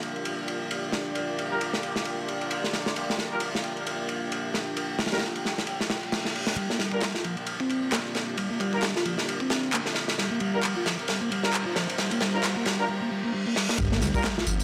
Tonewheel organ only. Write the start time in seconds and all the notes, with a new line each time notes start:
6.57 G3
6.70 A#3
6.80 G3
7.16 F4
7.25 F3
7.60 C4
7.92 A#3
8.37 G3
8.50 A#3
8.60 G3
8.96 F4
9.05 F3
9.41 C4
9.74 A#3
10.18 G3
10.31 A#3
10.41 G3
10.76 F4
10.86 F3
11.09 G3
11.21 A#3
11.31 G3
11.66 F4
11.76 F3
11.99 G3
12.12 A#3
12.21 G3
12.44 G3
12.57 A#3
12.66 G3
12.89 G3
13.02 A#3
13.12 G3
13.25 A#3
13.34 G3
13.47 A#3
13.57 G3
13.70 A#3
13.79 G3
13.92 A#3
14.02 G3
14.37 F4
14.48 F3